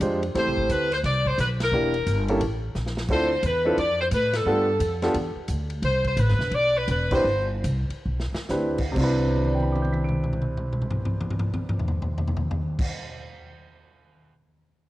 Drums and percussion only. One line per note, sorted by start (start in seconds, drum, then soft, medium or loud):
0.01 kick soft
0.01 hi-hat pedal medium
0.01 ride medium
0.23 ride soft
0.35 kick soft
0.35 snare soft
0.35 ride medium
0.57 kick medium
0.69 kick soft
0.69 hi-hat pedal medium
0.69 ride medium
0.92 snare soft
0.92 ride soft
1.04 kick soft
1.04 snare soft
1.04 ride medium
1.26 kick medium
1.38 kick soft
1.38 hi-hat pedal medium
1.38 ride medium
1.60 snare medium
1.60 ride medium
1.94 ride soft
2.06 kick soft
2.06 hi-hat pedal medium
2.06 ride medium
2.28 ride soft
2.41 kick soft
2.41 ride medium
2.75 snare soft
2.75 hi-hat pedal soft
2.86 snare medium
2.97 snare medium
3.08 kick medium
3.08 crash medium
3.43 kick soft
3.43 hi-hat pedal medium
3.43 ride medium
3.77 kick soft
3.77 ride medium
4.11 kick soft
4.11 hi-hat pedal medium
4.11 ride medium
4.34 snare medium
4.34 ride medium
4.80 kick soft
4.80 hi-hat pedal medium
4.80 ride medium
5.02 snare medium
5.02 ride soft
5.14 kick soft
5.14 ride medium
5.48 kick soft
5.48 hi-hat pedal medium
5.48 ride medium
5.70 ride soft
5.82 kick soft
5.82 ride medium
6.04 kick medium
6.04 ride soft
6.17 kick soft
6.17 hi-hat pedal medium
6.17 ride medium
6.28 snare soft
6.40 snare soft
6.51 kick soft
6.51 ride medium
6.88 kick soft
6.88 hi-hat pedal medium
6.88 ride medium
7.11 kick medium
7.11 crash medium
7.64 kick soft
7.64 hi-hat pedal medium
7.64 ride medium
7.90 ride soft
8.20 snare medium
8.34 snare medium
8.49 snare medium
8.49 hi-hat pedal soft
8.78 kick medium
8.78 crash medium
8.96 kick loud
8.96 crash medium
9.27 high tom soft
9.36 high tom soft
9.44 high tom soft
9.60 high tom soft
9.75 high tom medium
9.85 high tom medium
9.94 high tom medium
10.09 mid tom medium
10.24 mid tom medium
10.33 mid tom medium
10.42 mid tom medium
10.57 mid tom medium
10.73 mid tom medium
10.82 mid tom medium
10.91 mid tom medium
11.05 mid tom medium
11.21 mid tom medium
11.30 mid tom medium
11.39 mid tom medium
11.54 mid tom medium
11.69 mid tom medium
11.79 floor tom medium
11.88 floor tom medium
12.02 floor tom medium
12.18 floor tom medium
12.27 floor tom medium
12.37 floor tom medium
12.51 floor tom medium
12.79 kick loud
12.79 crash loud